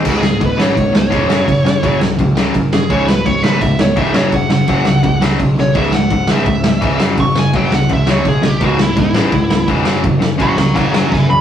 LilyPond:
<<
  \new Staff \with { instrumentName = "Lead electric guitar" } { \time 4/4 \key cis \minor \tempo 4 = 168 gis'4 b'8 cis''4 cis''4.~ | cis''4. r2 gis'8 | cis''8 b'8 cis''8 b'8 e''8 cis''8 e''8 cis''8 | fis''8 fis''2 r4 cis''8 |
e''8 fis''4 e''2 r8 | cis'''8 gis''8 g''8 fis''8 e''8 cis''8 gis'8 g'8 | fis'8 e'8 e'2 r4 | r4 <ais'' cis'''>8 <ais'' cis'''>8 <fis'' ais''>8 <fis'' ais''>8 <e'' gis''>8 b''8 | }
  \new Staff \with { instrumentName = "Distorted electric guitar" } { \clef bass \time 4/4 \key cis \minor <cis, gis, cis>8 <cis, gis,>8 <cis, gis,>8 <cis, gis, cis>8 <cis, gis,>8 <cis, gis,>8 <cis, gis, cis>8 <fis, cis fis>8 | <fis, cis>8 <fis, cis>8 <fis, cis fis>8 <fis, cis>8 <fis, cis>8 <fis, cis fis>8 <fis, cis>8 <fis, cis>8 | <cis, gis, cis>8 <cis, gis,>8 <cis, gis,>8 <cis, gis, cis>8 <cis, gis,>8 <cis, gis,>8 <cis, gis, cis>8 <fis, cis fis>8 | <fis, cis>8 <fis, cis>8 <fis, cis fis>8 <fis, cis>8 <fis, cis>8 <fis, cis fis>8 <fis, cis>8 <fis, cis>8 |
<cis, gis, cis>8 <cis, gis,>8 <cis, gis,>8 <cis, gis, cis>8 <cis, gis,>8 <cis, gis,>8 <cis, gis, cis>8 <fis, cis fis>8 | <fis, cis>8 <fis, cis>8 <fis, cis fis>8 <fis, cis>8 <fis, cis>8 <fis, cis fis>8 <fis, cis>8 <fis, cis>8 | <cis, gis, cis>8 <cis, gis,>8 <cis, gis,>8 <cis, gis, cis>8 <cis, gis,>8 <cis, gis,>8 <cis, gis, cis>8 <fis, cis fis>8 | <fis, cis>8 <fis, cis>8 <fis, cis fis>8 <fis, cis>8 <fis, cis fis>8 <fis, cis fis>8 <fis, cis>8 <fis, cis>8 | }
  \new Staff \with { instrumentName = "Overdriven electric guitar" } { \clef bass \time 4/4 \key cis \minor <cis, gis, cis>8 <cis, gis,>8 <cis, gis,>8 <cis, gis, cis>8 <cis, gis,>8 <cis, gis,>8 <cis, gis, cis>8 <fis, cis fis>8 | <fis, cis>8 <fis, cis>8 <fis, cis fis>8 <fis, cis>8 <fis, cis>8 <fis, cis fis>8 <fis, cis>8 <fis, cis>8 | <cis, gis, cis>8 <cis, gis,>8 <cis, gis,>8 <cis, gis, cis>8 <cis, gis,>8 <cis, gis,>8 <cis, gis, cis>8 <fis, cis fis>8 | <fis, cis>8 <fis, cis>8 <fis, cis fis>8 <fis, cis>8 <fis, cis>8 <fis, cis fis>8 <fis, cis>8 <fis, cis>8 |
<cis, gis, cis>8 <cis, gis,>8 <cis, gis,>8 <cis, gis, cis>8 <cis, gis,>8 <cis, gis,>8 <cis, gis, cis>8 <fis, cis fis>8 | <fis, cis>8 <fis, cis>8 <fis, cis fis>8 <fis, cis>8 <fis, cis>8 <fis, cis fis>8 <fis, cis>8 <fis, cis>8 | <cis, gis, cis>8 <cis, gis,>8 <cis, gis,>8 <cis, gis, cis>8 <cis, gis,>8 <cis, gis,>8 <cis, gis, cis>8 <fis, cis fis>8 | <fis, cis>8 <fis, cis>8 <fis, cis fis>8 <fis, cis>8 <fis, cis fis>8 <fis, cis fis>8 <fis, cis>8 <fis, cis>8 | }
  \new Staff \with { instrumentName = "Picked electric bass" } { \clef bass \time 4/4 \key cis \minor cis,,4 cis,,8 gis,,8 cis,,8 cis,,8 e,,8 fis,,8 | fis,,8 fis,,8 fis,,8 cis,,8 cis,4 fis,4 | cis,,4 cis,,8 gis,,8 cis,,8 cis,,8 cis,,8 fis,,8 | fis,,8 fis,,8 fis,,8 cis,,8 cis,4 b,,4 |
cis,,4 cis,,8 gis,,8 cis,,8 cis,,8 cis,,8 fis,,8 | fis,,8 fis,,8 fis,,8 cis,,8 cis,4 b,,4 | cis,,4 cis,,8 gis,,8 cis,,8 cis,,8 e,,8 fis,,8 | fis,,8 fis,,8 fis,,8 cis,,8 fis,,4 fis,4 | }
  \new DrumStaff \with { instrumentName = "Drums" } \drummode { \time 4/4 <cymc bd>8 sn8 <cymc bd>8 sn8 <cymc bd>8 sn8 <cymc bd>8 sn8 | <cymc bd>8 sn8 <cymc bd>8 sn8 <cymc bd>8 sn8 <cymc bd>8 sn8 | <cymc bd>8 sn8 <cymc bd>8 sn8 <cymc bd>8 sn8 <cymc bd>8 sn8 | <cymc bd>8 sn8 <cymc bd>8 sn8 <cymc bd>8 sn8 <cymc bd>8 sn8 |
<cymc bd>8 sn8 <cymc bd>8 sn8 <cymc bd>8 sn8 <cymc bd>8 sn8 | <cymc bd>8 sn8 <cymc bd>8 sn8 <cymc bd>8 sn8 <cymc bd>8 sn8 | <cymc bd>8 sn8 <cymc bd>8 sn8 <cymc bd>8 sn8 <cymc bd>8 sn8 | <cymc bd>8 sn8 <cymc bd>8 sn8 <cymc bd>8 sn8 <bd sn>8 tomfh8 | }
>>